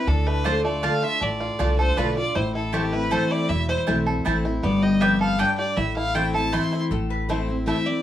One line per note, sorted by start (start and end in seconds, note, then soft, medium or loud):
0.07 0.86 D2 medium
0.07 0.44 D3 medium
0.07 0.61 D4 medium
0.07 0.28 A4 medium
0.27 0.64 A3 medium
0.27 0.47 B4 medium
0.44 0.64 D3 medium
0.44 0.54 A3 medium
0.44 0.64 A3 loud
0.44 0.65 D4 loud
0.44 0.54 F4 medium
0.44 0.99 F4 medium
0.44 0.63 F4 loud
0.44 0.64 C5 medium
0.44 0.54 D5 loud
0.44 0.55 A5 medium
0.64 2.05 A3 medium
0.64 0.83 D4 soft
0.64 0.82 F4 medium
0.64 0.85 D5 medium
0.83 1.02 D3 medium
0.83 0.92 A3 medium
0.83 1.02 A3 medium
0.83 1.20 D4 medium
0.83 1.02 D4 loud
0.83 0.92 F4 medium
0.83 1.02 F4 medium
0.83 0.93 D5 medium
0.83 1.05 F5 loud
0.83 0.93 A5 loud
1.03 1.21 D4 medium
1.03 1.39 F4 medium
1.03 1.21 F4 medium
1.03 1.23 E5 loud
1.21 1.48 A1 medium
1.21 1.94 A2 medium
1.21 1.58 D4 medium
1.21 1.78 D5 medium
1.40 1.93 F4 medium
1.59 1.92 C2 medium
1.59 1.78 D3 medium
1.59 1.68 A3 medium
1.59 1.78 A3 medium
1.59 1.96 D4 medium
1.59 1.78 D4 medium
1.59 1.69 F4 medium
1.59 1.77 F4 loud
1.59 1.69 D5 medium
1.59 1.69 A5 medium
1.79 1.97 D4 medium
1.79 1.96 F4 medium
1.79 3.11 A4 medium
1.79 1.99 C5 medium
1.97 2.30 B1 medium
1.97 2.16 D3 medium
1.97 2.06 A3 medium
1.97 2.16 A3 loud
1.97 2.35 D4 medium
1.97 2.17 D4 medium
1.97 2.07 F4 medium
1.97 2.16 F4 loud
1.97 2.16 B4 medium
1.97 2.07 D5 medium
1.97 2.07 A5 medium
2.16 2.36 D4 soft
2.16 2.35 F4 medium
2.16 2.37 D5 loud
2.35 3.15 A1 loud
2.35 3.08 A2 medium
2.35 2.54 E4 medium
2.35 2.54 C5 medium
2.55 2.92 E4 medium
2.55 2.74 A4 medium
2.73 2.92 E3 medium
2.73 2.82 A3 medium
2.73 2.92 A3 medium
2.73 3.27 A3 medium
2.73 2.93 C4 medium
2.73 2.82 E4 medium
2.73 2.92 E4 medium
2.73 2.94 G4 medium
2.73 2.83 C5 loud
2.73 2.83 A5 medium
2.93 3.11 C4 medium
2.93 3.11 E4 medium
2.93 3.30 E4 medium
2.93 3.13 B4 medium
3.11 3.47 E3 loud
3.11 3.20 A3 medium
3.11 3.47 A3 loud
3.11 3.48 C4 loud
3.11 3.21 E4 medium
3.11 3.48 E4 loud
3.11 3.65 A4 medium
3.11 3.33 C5 medium
3.11 3.21 C5 medium
3.11 3.21 A5 medium
3.31 3.48 E4 medium
3.31 3.50 D5 loud
3.49 3.76 E1 medium
3.49 4.22 E2 medium
3.49 3.68 E4 medium
3.49 3.68 E5 medium
3.68 3.86 E4 medium
3.68 3.79 C5 medium
3.86 4.20 B1 medium
3.86 4.06 E3 medium
3.86 3.96 A3 medium
3.86 4.06 A3 loud
3.86 4.07 C4 loud
3.86 3.96 E4 medium
3.86 4.24 E4 medium
3.86 4.06 E4 loud
3.86 3.96 C5 medium
3.86 3.97 A5 medium
4.06 4.25 C4 medium
4.06 4.25 E4 medium
4.06 4.59 A4 medium
4.25 4.58 A1 medium
4.25 4.44 E3 loud
4.25 4.34 A3 medium
4.25 4.44 A3 loud
4.25 4.45 C4 loud
4.25 4.35 E4 medium
4.25 4.44 E4 medium
4.25 4.44 E4 loud
4.25 4.35 C5 loud
4.25 4.35 A5 loud
4.45 4.63 C4 soft
4.45 4.63 E4 medium
4.63 5.42 G1 loud
4.63 5.01 G2 medium
4.63 5.00 B3 medium
4.63 4.84 D5 medium
4.82 5.36 G4 medium
4.82 5.02 D#5 medium
5.00 5.38 F2 medium
5.00 5.10 B3 medium
5.00 5.55 B3 medium
5.00 5.10 G4 loud
5.00 5.11 D5 loud
5.00 5.20 E5 medium
5.00 5.11 G5 loud
5.20 5.73 A4 medium
5.20 5.40 F5 medium
5.38 5.75 G2 loud
5.38 5.48 B3 medium
5.38 5.77 D4 medium
5.38 5.48 G4 medium
5.38 5.48 D5 medium
5.38 5.58 G5 medium
5.38 5.49 G5 loud
5.58 5.77 G4 medium
5.58 5.78 D5 loud
5.77 6.56 A1 loud
5.77 6.49 A2 medium
5.77 5.95 E4 medium
5.77 5.96 E5 medium
5.96 6.14 E4 medium
5.96 6.17 F5 loud
6.14 6.34 E3 medium
6.14 6.24 A3 medium
6.14 6.34 A3 medium
6.14 6.34 C4 medium
6.14 6.24 E4 medium
6.14 6.52 E4 medium
6.14 6.34 E4 loud
6.14 6.24 C5 medium
6.14 6.34 G5 medium
6.14 6.25 A5 medium
6.34 6.53 C4 medium
6.34 6.52 E4 medium
6.34 6.87 A4 medium
6.34 6.54 A5 medium
6.52 6.89 E3 medium
6.52 6.62 A3 medium
6.52 6.89 A3 medium
6.52 6.90 C4 medium
6.52 6.62 E4 medium
6.52 6.71 E4 medium
6.52 6.90 E4 loud
6.52 6.62 C5 medium
6.52 6.62 A5 loud
6.52 6.82 C6 medium
6.72 6.91 E4 medium
6.91 7.70 A1 medium
6.91 7.64 A2 medium
6.91 7.11 A4 medium
7.10 7.28 B4 medium
7.29 7.48 E3 loud
7.29 7.48 A3 loud
7.29 7.38 A3 medium
7.29 7.48 C4 loud
7.29 7.47 E4 loud
7.29 7.38 E4 medium
7.29 7.56 C5 medium
7.48 7.66 C4 medium
7.48 7.66 E4 medium
7.66 7.85 E3 medium
7.66 7.86 A3 medium
7.66 7.76 A3 medium
7.66 7.86 C4 loud
7.66 7.85 E4 loud
7.66 7.76 E4 medium
7.66 7.88 E5 medium
7.86 8.02 C4 soft
7.86 8.02 E4 medium
7.86 8.02 D5 loud